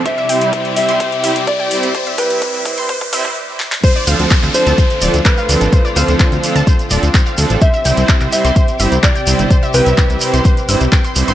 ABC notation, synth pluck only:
X:1
M:4/4
L:1/16
Q:1/4=127
K:Ddor
V:1 name="Synth pluck"
c e g z4 c' c z e z2 g z2 | c e g z4 c' c z e z4 z | [cc'] [dd'] [ff'] z4 [aa'] [cc'] z [dd'] z2 [ff'] z2 | [cc'] [dd'] [ff'] z4 [aa'] [cc'] z [dd'] z2 [ff'] z2 |
[cc'] [ee'] [gg'] z4 c' [cc'] z [ee'] z2 [gg'] z2 | [cc'] [ee'] [gg'] z4 c' [cc'] z e' z [gg'] c' z c' |]